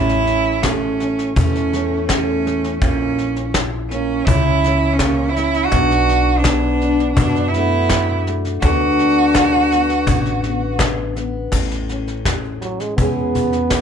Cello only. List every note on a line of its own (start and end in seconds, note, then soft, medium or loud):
0.00 0.64 E4 loud
0.62 1.36 C#4 medium
1.37 2.05 C#4 medium
2.08 2.77 C#4 medium
2.81 3.50 C#4 medium
3.90 4.26 C#4 medium
4.25 4.95 E4 loud
4.93 5.30 C#4 medium
5.29 5.67 E4 medium
5.66 6.40 F#4 loud
6.38 7.13 D4 medium
7.13 7.50 D4 medium
7.49 8.24 E4 medium
8.61 10.76 F#4 loud